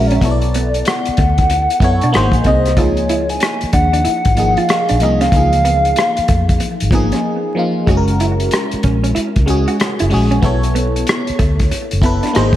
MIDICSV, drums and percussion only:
0, 0, Header, 1, 2, 480
1, 0, Start_track
1, 0, Tempo, 638298
1, 163, Time_signature, 4, 2, 24, 8
1, 9447, End_track
2, 0, Start_track
2, 0, Title_t, "Drums"
2, 80, Note_on_c, 9, 42, 43
2, 155, Note_off_c, 9, 42, 0
2, 162, Note_on_c, 9, 36, 88
2, 165, Note_on_c, 9, 42, 73
2, 237, Note_off_c, 9, 36, 0
2, 240, Note_off_c, 9, 42, 0
2, 312, Note_on_c, 9, 42, 39
2, 388, Note_off_c, 9, 42, 0
2, 409, Note_on_c, 9, 42, 59
2, 484, Note_off_c, 9, 42, 0
2, 558, Note_on_c, 9, 42, 41
2, 633, Note_off_c, 9, 42, 0
2, 641, Note_on_c, 9, 42, 80
2, 660, Note_on_c, 9, 37, 110
2, 716, Note_off_c, 9, 42, 0
2, 735, Note_off_c, 9, 37, 0
2, 792, Note_on_c, 9, 42, 41
2, 867, Note_off_c, 9, 42, 0
2, 880, Note_on_c, 9, 42, 65
2, 888, Note_on_c, 9, 36, 76
2, 955, Note_off_c, 9, 42, 0
2, 963, Note_off_c, 9, 36, 0
2, 1036, Note_on_c, 9, 42, 45
2, 1042, Note_on_c, 9, 36, 77
2, 1112, Note_off_c, 9, 42, 0
2, 1117, Note_off_c, 9, 36, 0
2, 1126, Note_on_c, 9, 42, 71
2, 1201, Note_off_c, 9, 42, 0
2, 1281, Note_on_c, 9, 42, 47
2, 1356, Note_off_c, 9, 42, 0
2, 1356, Note_on_c, 9, 36, 93
2, 1366, Note_on_c, 9, 42, 61
2, 1432, Note_off_c, 9, 36, 0
2, 1441, Note_off_c, 9, 42, 0
2, 1515, Note_on_c, 9, 42, 41
2, 1590, Note_off_c, 9, 42, 0
2, 1607, Note_on_c, 9, 42, 62
2, 1617, Note_on_c, 9, 37, 102
2, 1682, Note_off_c, 9, 42, 0
2, 1693, Note_off_c, 9, 37, 0
2, 1742, Note_on_c, 9, 36, 97
2, 1753, Note_on_c, 9, 42, 54
2, 1818, Note_off_c, 9, 36, 0
2, 1828, Note_off_c, 9, 42, 0
2, 1837, Note_on_c, 9, 42, 47
2, 1841, Note_on_c, 9, 36, 71
2, 1912, Note_off_c, 9, 42, 0
2, 1916, Note_off_c, 9, 36, 0
2, 1996, Note_on_c, 9, 42, 42
2, 2009, Note_on_c, 9, 37, 33
2, 2071, Note_off_c, 9, 42, 0
2, 2081, Note_on_c, 9, 36, 89
2, 2081, Note_on_c, 9, 42, 73
2, 2084, Note_off_c, 9, 37, 0
2, 2156, Note_off_c, 9, 36, 0
2, 2156, Note_off_c, 9, 42, 0
2, 2232, Note_on_c, 9, 42, 36
2, 2307, Note_off_c, 9, 42, 0
2, 2326, Note_on_c, 9, 42, 61
2, 2402, Note_off_c, 9, 42, 0
2, 2477, Note_on_c, 9, 42, 40
2, 2552, Note_off_c, 9, 42, 0
2, 2560, Note_on_c, 9, 42, 74
2, 2578, Note_on_c, 9, 37, 105
2, 2635, Note_off_c, 9, 42, 0
2, 2654, Note_off_c, 9, 37, 0
2, 2714, Note_on_c, 9, 42, 40
2, 2789, Note_off_c, 9, 42, 0
2, 2804, Note_on_c, 9, 42, 66
2, 2808, Note_on_c, 9, 36, 75
2, 2879, Note_off_c, 9, 42, 0
2, 2883, Note_off_c, 9, 36, 0
2, 2959, Note_on_c, 9, 42, 46
2, 3035, Note_off_c, 9, 42, 0
2, 3045, Note_on_c, 9, 42, 70
2, 3120, Note_off_c, 9, 42, 0
2, 3194, Note_on_c, 9, 42, 51
2, 3200, Note_on_c, 9, 36, 87
2, 3270, Note_off_c, 9, 42, 0
2, 3275, Note_off_c, 9, 36, 0
2, 3284, Note_on_c, 9, 42, 62
2, 3359, Note_off_c, 9, 42, 0
2, 3435, Note_on_c, 9, 42, 41
2, 3510, Note_off_c, 9, 42, 0
2, 3525, Note_on_c, 9, 42, 69
2, 3535, Note_on_c, 9, 37, 109
2, 3600, Note_off_c, 9, 42, 0
2, 3610, Note_off_c, 9, 37, 0
2, 3675, Note_on_c, 9, 42, 55
2, 3750, Note_off_c, 9, 42, 0
2, 3760, Note_on_c, 9, 42, 47
2, 3835, Note_off_c, 9, 42, 0
2, 3918, Note_on_c, 9, 42, 41
2, 3930, Note_on_c, 9, 37, 32
2, 3993, Note_off_c, 9, 42, 0
2, 4001, Note_on_c, 9, 36, 94
2, 4004, Note_on_c, 9, 42, 68
2, 4006, Note_off_c, 9, 37, 0
2, 4076, Note_off_c, 9, 36, 0
2, 4079, Note_off_c, 9, 42, 0
2, 4157, Note_on_c, 9, 42, 43
2, 4232, Note_off_c, 9, 42, 0
2, 4250, Note_on_c, 9, 42, 53
2, 4325, Note_off_c, 9, 42, 0
2, 4399, Note_on_c, 9, 42, 38
2, 4474, Note_off_c, 9, 42, 0
2, 4482, Note_on_c, 9, 42, 71
2, 4501, Note_on_c, 9, 37, 99
2, 4557, Note_off_c, 9, 42, 0
2, 4576, Note_off_c, 9, 37, 0
2, 4637, Note_on_c, 9, 42, 44
2, 4712, Note_off_c, 9, 42, 0
2, 4723, Note_on_c, 9, 42, 60
2, 4727, Note_on_c, 9, 36, 75
2, 4799, Note_off_c, 9, 42, 0
2, 4803, Note_off_c, 9, 36, 0
2, 4880, Note_on_c, 9, 42, 52
2, 4882, Note_on_c, 9, 36, 79
2, 4956, Note_off_c, 9, 42, 0
2, 4957, Note_off_c, 9, 36, 0
2, 4963, Note_on_c, 9, 42, 69
2, 5038, Note_off_c, 9, 42, 0
2, 5116, Note_on_c, 9, 42, 54
2, 5192, Note_off_c, 9, 42, 0
2, 5195, Note_on_c, 9, 36, 81
2, 5204, Note_on_c, 9, 42, 58
2, 5270, Note_off_c, 9, 36, 0
2, 5279, Note_off_c, 9, 42, 0
2, 5353, Note_on_c, 9, 42, 40
2, 5373, Note_on_c, 9, 37, 30
2, 5428, Note_off_c, 9, 42, 0
2, 5449, Note_off_c, 9, 37, 0
2, 5920, Note_on_c, 9, 36, 88
2, 5923, Note_on_c, 9, 42, 62
2, 5995, Note_off_c, 9, 36, 0
2, 5998, Note_off_c, 9, 42, 0
2, 6073, Note_on_c, 9, 42, 40
2, 6148, Note_off_c, 9, 42, 0
2, 6166, Note_on_c, 9, 42, 56
2, 6242, Note_off_c, 9, 42, 0
2, 6315, Note_on_c, 9, 42, 40
2, 6391, Note_off_c, 9, 42, 0
2, 6400, Note_on_c, 9, 42, 76
2, 6419, Note_on_c, 9, 37, 109
2, 6475, Note_off_c, 9, 42, 0
2, 6494, Note_off_c, 9, 37, 0
2, 6552, Note_on_c, 9, 42, 40
2, 6628, Note_off_c, 9, 42, 0
2, 6641, Note_on_c, 9, 42, 61
2, 6647, Note_on_c, 9, 36, 82
2, 6716, Note_off_c, 9, 42, 0
2, 6723, Note_off_c, 9, 36, 0
2, 6798, Note_on_c, 9, 42, 50
2, 6873, Note_off_c, 9, 42, 0
2, 6888, Note_on_c, 9, 42, 68
2, 6963, Note_off_c, 9, 42, 0
2, 7038, Note_on_c, 9, 42, 51
2, 7042, Note_on_c, 9, 36, 90
2, 7113, Note_off_c, 9, 42, 0
2, 7117, Note_off_c, 9, 36, 0
2, 7126, Note_on_c, 9, 42, 66
2, 7202, Note_off_c, 9, 42, 0
2, 7277, Note_on_c, 9, 42, 42
2, 7352, Note_off_c, 9, 42, 0
2, 7367, Note_on_c, 9, 42, 73
2, 7378, Note_on_c, 9, 37, 105
2, 7443, Note_off_c, 9, 42, 0
2, 7453, Note_off_c, 9, 37, 0
2, 7514, Note_on_c, 9, 42, 51
2, 7589, Note_off_c, 9, 42, 0
2, 7598, Note_on_c, 9, 46, 36
2, 7673, Note_off_c, 9, 46, 0
2, 7758, Note_on_c, 9, 42, 45
2, 7833, Note_off_c, 9, 42, 0
2, 7840, Note_on_c, 9, 42, 61
2, 7841, Note_on_c, 9, 36, 94
2, 7915, Note_off_c, 9, 42, 0
2, 7916, Note_off_c, 9, 36, 0
2, 7997, Note_on_c, 9, 42, 43
2, 8072, Note_off_c, 9, 42, 0
2, 8090, Note_on_c, 9, 42, 62
2, 8165, Note_off_c, 9, 42, 0
2, 8243, Note_on_c, 9, 42, 46
2, 8318, Note_off_c, 9, 42, 0
2, 8323, Note_on_c, 9, 42, 71
2, 8342, Note_on_c, 9, 37, 111
2, 8398, Note_off_c, 9, 42, 0
2, 8417, Note_off_c, 9, 37, 0
2, 8477, Note_on_c, 9, 42, 44
2, 8552, Note_off_c, 9, 42, 0
2, 8566, Note_on_c, 9, 42, 60
2, 8569, Note_on_c, 9, 36, 87
2, 8641, Note_off_c, 9, 42, 0
2, 8644, Note_off_c, 9, 36, 0
2, 8719, Note_on_c, 9, 42, 46
2, 8722, Note_on_c, 9, 36, 75
2, 8794, Note_off_c, 9, 42, 0
2, 8797, Note_off_c, 9, 36, 0
2, 8809, Note_on_c, 9, 42, 67
2, 8884, Note_off_c, 9, 42, 0
2, 8956, Note_on_c, 9, 42, 50
2, 9032, Note_off_c, 9, 42, 0
2, 9036, Note_on_c, 9, 36, 89
2, 9045, Note_on_c, 9, 42, 65
2, 9111, Note_off_c, 9, 36, 0
2, 9120, Note_off_c, 9, 42, 0
2, 9196, Note_on_c, 9, 42, 42
2, 9216, Note_on_c, 9, 37, 32
2, 9271, Note_off_c, 9, 42, 0
2, 9286, Note_on_c, 9, 42, 68
2, 9292, Note_off_c, 9, 37, 0
2, 9297, Note_on_c, 9, 37, 103
2, 9362, Note_off_c, 9, 42, 0
2, 9372, Note_off_c, 9, 37, 0
2, 9422, Note_on_c, 9, 36, 103
2, 9447, Note_off_c, 9, 36, 0
2, 9447, End_track
0, 0, End_of_file